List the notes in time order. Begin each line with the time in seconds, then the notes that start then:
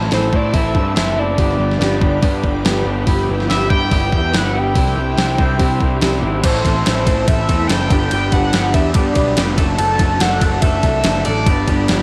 Already playing: A1 A2 E3 A3 C4 E4 A4 C5 A5 E6
0.03 snare
0.11 A1 A2 E3 A3 C4 E4 A4 C5, snare, open hi-hat
0.33 A2 E3 A3 C4 E4 A4 D5, kick
0.53 A1 A2 E3 A3 C4 E4 A4 E5, kick, open hi-hat
0.75 G2, kick
0.95 F#1 A2 E3 A3 C4 E4 A4 E5, snare, open hi-hat
1.16 A2 E3 A3 C4 E4 A4 D5
1.37 G1 G2 D3 G3 B3 D4 G4 B4 G5 D6, kick, open hi-hat
1.51 snare
1.59 G1
1.71 snare
1.78 G1 G2 D3 G3 B3 D4 G4, snare, open hi-hat
1.99 G1 G2 D3 G3 B3 D4 G4, kick
2.20 G2 D3 G3 B3 D4 G4, kick, open hi-hat
2.44 G1, kick
2.63 G1 G2 D3 G3 B3 D4 G4, snare, open hi-hat
2.84 G1 G2 D3 G3 B3 D4 G4
3.06 G1 G3 B3 E4 G4 E6, kick, open hi-hat
3.19 snare
3.30 G1
3.40 snare
3.48 G1 G3 B3 E4 G4 E5, snare, open hi-hat
3.69 G2 G3 B3 E4 G4 G5, kick
3.91 G1 G3 B3 E4 G4, kick, open hi-hat
4.12 E2, kick
4.33 G1 G3 B3 E4 G4, snare, open hi-hat
4.37 F#5
4.54 G3 B3 E4 G4
4.59 G5
4.74 C2 C3 G3 C4 D4 E4 G4 C5 E5 D6, kick, open hi-hat
4.88 snare
4.97 C2
5.17 C2 C3 G3 C4 D4 E4 G4, snare, open hi-hat
5.37 C2 C3 G3 C4 D4 E4 G4, kick
5.58 C3 G3 C4 D4 E4 G4, kick, open hi-hat
5.80 C2, kick
6.00 C2 C3 G3 C4 D4 E4 G4, snare, open hi-hat
6.21 G#1 C3 G3 C4 D4 E4 G4
6.43 A1 A2 E3 C4 E4 A4 C5, kick, crash, ride
6.65 A1 A2 E3 C4 E4 A4, kick, ride
6.84 A1 A2 E3 C4 E4 A4, snare, ride
7.06 A1 A2 E3 C4 E4 A4, kick, ride
7.27 A1 A2 E3 C4 E4 A4 E5, kick, ride
7.48 E2 A2 E3 C4 E4 A4, kick, ride
7.67 F#1 A2 E3 C4 E4 A4 G5, snare, ride
7.90 G1 G2 D3 G3 B3 D4 G4, kick, ride
8.11 G1 G2 D3 G3 B3 D4 G4 G5, ride
8.31 G1 G2 D3 G3 B3 D4 G4 F#5, kick, ride
8.53 G1 G2 D3 G3 B3 D4 G4, snare, ride
8.73 E2 G2 D3 G3 B3 D4 G4 E5, kick, ride
8.94 G2 D3 G3 B3 D4 G4 D5, kick, ride
9.15 B1 G2 D3 G3 B3 D4 G4, kick, ride
9.36 F1 G2 D3 G3 B3 D4 G4, snare, ride
9.56 F#1 F#3 A3 D4 A4, kick, ride
9.77 F#1 F#3 A3 D4 A4 A5, ride
9.98 F#1 F#3 A3 D4 A4, kick, ride
10.19 F#1 F#3 A3 D4 A4 F#5, snare, ride
10.40 F#1 F#3 A3 D4 A4, kick, ride
10.61 F#1 F#3 A3 D4 A4 E5, kick, ride
10.82 C2 F#3 A3 D4 A4, kick, ride
11.03 F#1 F#3 A3 D4 A4, snare, ride
11.24 A1 F#3 A3 D4 A4 D5, ride
11.46 G1 G2 D3 G3 B3 D4 G4, kick, ride
11.67 G1 G2 D3 G3 B3 D4 G4, kick, ride
11.88 G1 G2 D3 G3 B3 D4 G4, snare, ride